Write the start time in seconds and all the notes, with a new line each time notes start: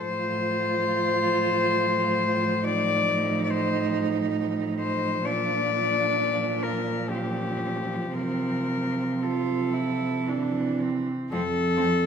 0.00 A2 F3 F4 C5
2.64 D#4 D5
3.44 D5
3.50 C5
4.81 C5
5.25 A#2 F3 D4 D5
6.63 A#4
7.10 C#4 G4
8.13 C3 C4 A#4
9.22 F4 A4
9.73 E4
10.28 E3 D4
10.82 C4
11.31 F2 F3 C4 A4
11.77 F3 C4